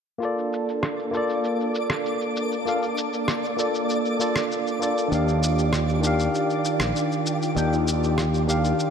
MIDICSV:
0, 0, Header, 1, 6, 480
1, 0, Start_track
1, 0, Key_signature, -2, "major"
1, 0, Tempo, 612245
1, 172, Time_signature, 4, 2, 24, 8
1, 6978, End_track
2, 0, Start_track
2, 0, Title_t, "Synth texture"
2, 0, Program_c, 0, 99
2, 171, Note_on_c, 0, 74, 79
2, 173, Note_on_c, 0, 86, 80
2, 6978, Note_off_c, 0, 74, 0
2, 6978, Note_off_c, 0, 86, 0
2, 6978, End_track
3, 0, Start_track
3, 0, Title_t, "Tine electric piano"
3, 0, Program_c, 1, 4
3, 144, Note_on_c, 1, 58, 67
3, 158, Note_on_c, 1, 65, 61
3, 178, Note_on_c, 1, 69, 58
3, 194, Note_on_c, 1, 74, 70
3, 850, Note_off_c, 1, 58, 0
3, 857, Note_off_c, 1, 65, 0
3, 867, Note_off_c, 1, 69, 0
3, 869, Note_on_c, 1, 58, 75
3, 875, Note_off_c, 1, 74, 0
3, 887, Note_on_c, 1, 65, 70
3, 900, Note_on_c, 1, 69, 66
3, 917, Note_on_c, 1, 74, 86
3, 2053, Note_off_c, 1, 58, 0
3, 2061, Note_off_c, 1, 65, 0
3, 2068, Note_off_c, 1, 69, 0
3, 2076, Note_off_c, 1, 74, 0
3, 2082, Note_on_c, 1, 58, 66
3, 2089, Note_on_c, 1, 65, 57
3, 2097, Note_on_c, 1, 69, 61
3, 2106, Note_on_c, 1, 77, 68
3, 2227, Note_off_c, 1, 58, 0
3, 2230, Note_off_c, 1, 65, 0
3, 2235, Note_off_c, 1, 69, 0
3, 2239, Note_off_c, 1, 77, 0
3, 2798, Note_on_c, 1, 58, 68
3, 2804, Note_on_c, 1, 65, 57
3, 2814, Note_on_c, 1, 69, 64
3, 2821, Note_on_c, 1, 74, 73
3, 3257, Note_off_c, 1, 58, 0
3, 3260, Note_off_c, 1, 65, 0
3, 3265, Note_off_c, 1, 69, 0
3, 3269, Note_off_c, 1, 74, 0
3, 3286, Note_on_c, 1, 58, 69
3, 3295, Note_on_c, 1, 65, 62
3, 3300, Note_on_c, 1, 69, 63
3, 3310, Note_on_c, 1, 74, 75
3, 3741, Note_off_c, 1, 58, 0
3, 3746, Note_off_c, 1, 65, 0
3, 3748, Note_off_c, 1, 69, 0
3, 3753, Note_off_c, 1, 74, 0
3, 3760, Note_on_c, 1, 58, 68
3, 3770, Note_on_c, 1, 65, 62
3, 3778, Note_on_c, 1, 69, 59
3, 3787, Note_on_c, 1, 74, 75
3, 3978, Note_off_c, 1, 58, 0
3, 3983, Note_off_c, 1, 65, 0
3, 3985, Note_on_c, 1, 51, 67
3, 3987, Note_off_c, 1, 69, 0
3, 3991, Note_off_c, 1, 74, 0
3, 4004, Note_on_c, 1, 62, 67
3, 4017, Note_on_c, 1, 67, 60
3, 4036, Note_on_c, 1, 77, 74
3, 4690, Note_off_c, 1, 51, 0
3, 4700, Note_off_c, 1, 62, 0
3, 4707, Note_off_c, 1, 67, 0
3, 4709, Note_on_c, 1, 51, 76
3, 4716, Note_off_c, 1, 77, 0
3, 4727, Note_on_c, 1, 62, 70
3, 4741, Note_on_c, 1, 67, 72
3, 4758, Note_on_c, 1, 77, 91
3, 5893, Note_off_c, 1, 51, 0
3, 5902, Note_off_c, 1, 62, 0
3, 5908, Note_off_c, 1, 67, 0
3, 5917, Note_off_c, 1, 77, 0
3, 5920, Note_on_c, 1, 51, 64
3, 5930, Note_on_c, 1, 62, 64
3, 5938, Note_on_c, 1, 67, 62
3, 5943, Note_on_c, 1, 79, 74
3, 6066, Note_off_c, 1, 51, 0
3, 6071, Note_off_c, 1, 62, 0
3, 6075, Note_off_c, 1, 67, 0
3, 6078, Note_off_c, 1, 79, 0
3, 6637, Note_on_c, 1, 51, 66
3, 6645, Note_on_c, 1, 62, 62
3, 6653, Note_on_c, 1, 67, 68
3, 6661, Note_on_c, 1, 77, 79
3, 6978, Note_off_c, 1, 51, 0
3, 6978, Note_off_c, 1, 62, 0
3, 6978, Note_off_c, 1, 67, 0
3, 6978, Note_off_c, 1, 77, 0
3, 6978, End_track
4, 0, Start_track
4, 0, Title_t, "String machine"
4, 0, Program_c, 2, 50
4, 167, Note_on_c, 2, 62, 82
4, 170, Note_on_c, 2, 69, 73
4, 171, Note_on_c, 2, 58, 66
4, 3980, Note_off_c, 2, 58, 0
4, 3980, Note_off_c, 2, 69, 0
4, 4011, Note_on_c, 2, 51, 73
4, 4011, Note_on_c, 2, 65, 68
4, 4013, Note_on_c, 2, 67, 83
4, 6978, Note_off_c, 2, 51, 0
4, 6978, Note_off_c, 2, 62, 0
4, 6978, Note_off_c, 2, 65, 0
4, 6978, Note_off_c, 2, 67, 0
4, 6978, End_track
5, 0, Start_track
5, 0, Title_t, "Fingered electric bass"
5, 0, Program_c, 3, 33
5, 4013, Note_on_c, 3, 39, 87
5, 4917, Note_off_c, 3, 39, 0
5, 5335, Note_on_c, 3, 34, 73
5, 5417, Note_off_c, 3, 34, 0
5, 5931, Note_on_c, 3, 39, 87
5, 6836, Note_off_c, 3, 39, 0
5, 6978, End_track
6, 0, Start_track
6, 0, Title_t, "Drums"
6, 175, Note_on_c, 9, 82, 39
6, 254, Note_off_c, 9, 82, 0
6, 299, Note_on_c, 9, 82, 19
6, 378, Note_off_c, 9, 82, 0
6, 416, Note_on_c, 9, 82, 67
6, 495, Note_off_c, 9, 82, 0
6, 540, Note_on_c, 9, 82, 28
6, 619, Note_off_c, 9, 82, 0
6, 649, Note_on_c, 9, 37, 69
6, 656, Note_on_c, 9, 82, 37
6, 728, Note_off_c, 9, 37, 0
6, 735, Note_off_c, 9, 82, 0
6, 778, Note_on_c, 9, 82, 19
6, 856, Note_off_c, 9, 82, 0
6, 892, Note_on_c, 9, 82, 65
6, 970, Note_off_c, 9, 82, 0
6, 1014, Note_on_c, 9, 82, 31
6, 1093, Note_off_c, 9, 82, 0
6, 1131, Note_on_c, 9, 82, 40
6, 1210, Note_off_c, 9, 82, 0
6, 1258, Note_on_c, 9, 82, 18
6, 1336, Note_off_c, 9, 82, 0
6, 1371, Note_on_c, 9, 82, 63
6, 1450, Note_off_c, 9, 82, 0
6, 1487, Note_on_c, 9, 37, 77
6, 1494, Note_on_c, 9, 82, 32
6, 1566, Note_off_c, 9, 37, 0
6, 1573, Note_off_c, 9, 82, 0
6, 1612, Note_on_c, 9, 82, 39
6, 1691, Note_off_c, 9, 82, 0
6, 1734, Note_on_c, 9, 82, 19
6, 1812, Note_off_c, 9, 82, 0
6, 1853, Note_on_c, 9, 82, 67
6, 1931, Note_off_c, 9, 82, 0
6, 1976, Note_on_c, 9, 82, 30
6, 2054, Note_off_c, 9, 82, 0
6, 2094, Note_on_c, 9, 82, 41
6, 2172, Note_off_c, 9, 82, 0
6, 2217, Note_on_c, 9, 82, 21
6, 2296, Note_off_c, 9, 82, 0
6, 2333, Note_on_c, 9, 82, 74
6, 2412, Note_off_c, 9, 82, 0
6, 2457, Note_on_c, 9, 82, 29
6, 2535, Note_off_c, 9, 82, 0
6, 2571, Note_on_c, 9, 37, 75
6, 2578, Note_on_c, 9, 82, 39
6, 2650, Note_off_c, 9, 37, 0
6, 2657, Note_off_c, 9, 82, 0
6, 2701, Note_on_c, 9, 82, 19
6, 2780, Note_off_c, 9, 82, 0
6, 2814, Note_on_c, 9, 82, 75
6, 2892, Note_off_c, 9, 82, 0
6, 2939, Note_on_c, 9, 82, 32
6, 3017, Note_off_c, 9, 82, 0
6, 3056, Note_on_c, 9, 82, 42
6, 3135, Note_off_c, 9, 82, 0
6, 3178, Note_on_c, 9, 82, 18
6, 3257, Note_off_c, 9, 82, 0
6, 3295, Note_on_c, 9, 82, 65
6, 3374, Note_off_c, 9, 82, 0
6, 3415, Note_on_c, 9, 37, 81
6, 3422, Note_on_c, 9, 82, 34
6, 3494, Note_off_c, 9, 37, 0
6, 3500, Note_off_c, 9, 82, 0
6, 3540, Note_on_c, 9, 82, 39
6, 3619, Note_off_c, 9, 82, 0
6, 3662, Note_on_c, 9, 82, 20
6, 3740, Note_off_c, 9, 82, 0
6, 3780, Note_on_c, 9, 82, 72
6, 3858, Note_off_c, 9, 82, 0
6, 3903, Note_on_c, 9, 82, 30
6, 3982, Note_off_c, 9, 82, 0
6, 4016, Note_on_c, 9, 82, 40
6, 4095, Note_off_c, 9, 82, 0
6, 4141, Note_on_c, 9, 82, 22
6, 4219, Note_off_c, 9, 82, 0
6, 4259, Note_on_c, 9, 82, 79
6, 4338, Note_off_c, 9, 82, 0
6, 4380, Note_on_c, 9, 82, 31
6, 4458, Note_off_c, 9, 82, 0
6, 4490, Note_on_c, 9, 37, 76
6, 4497, Note_on_c, 9, 82, 39
6, 4568, Note_off_c, 9, 37, 0
6, 4575, Note_off_c, 9, 82, 0
6, 4618, Note_on_c, 9, 82, 20
6, 4697, Note_off_c, 9, 82, 0
6, 4734, Note_on_c, 9, 82, 75
6, 4812, Note_off_c, 9, 82, 0
6, 4856, Note_on_c, 9, 82, 35
6, 4935, Note_off_c, 9, 82, 0
6, 4976, Note_on_c, 9, 82, 41
6, 5054, Note_off_c, 9, 82, 0
6, 5096, Note_on_c, 9, 82, 19
6, 5175, Note_off_c, 9, 82, 0
6, 5212, Note_on_c, 9, 82, 68
6, 5290, Note_off_c, 9, 82, 0
6, 5329, Note_on_c, 9, 37, 80
6, 5336, Note_on_c, 9, 82, 34
6, 5408, Note_off_c, 9, 37, 0
6, 5415, Note_off_c, 9, 82, 0
6, 5456, Note_on_c, 9, 82, 41
6, 5534, Note_off_c, 9, 82, 0
6, 5581, Note_on_c, 9, 82, 22
6, 5660, Note_off_c, 9, 82, 0
6, 5694, Note_on_c, 9, 82, 73
6, 5773, Note_off_c, 9, 82, 0
6, 5819, Note_on_c, 9, 82, 31
6, 5898, Note_off_c, 9, 82, 0
6, 5936, Note_on_c, 9, 82, 42
6, 6014, Note_off_c, 9, 82, 0
6, 6060, Note_on_c, 9, 82, 20
6, 6138, Note_off_c, 9, 82, 0
6, 6176, Note_on_c, 9, 82, 75
6, 6254, Note_off_c, 9, 82, 0
6, 6301, Note_on_c, 9, 82, 30
6, 6379, Note_off_c, 9, 82, 0
6, 6412, Note_on_c, 9, 37, 68
6, 6419, Note_on_c, 9, 82, 39
6, 6490, Note_off_c, 9, 37, 0
6, 6497, Note_off_c, 9, 82, 0
6, 6539, Note_on_c, 9, 82, 22
6, 6618, Note_off_c, 9, 82, 0
6, 6659, Note_on_c, 9, 82, 74
6, 6737, Note_off_c, 9, 82, 0
6, 6779, Note_on_c, 9, 82, 34
6, 6857, Note_off_c, 9, 82, 0
6, 6895, Note_on_c, 9, 82, 45
6, 6973, Note_off_c, 9, 82, 0
6, 6978, End_track
0, 0, End_of_file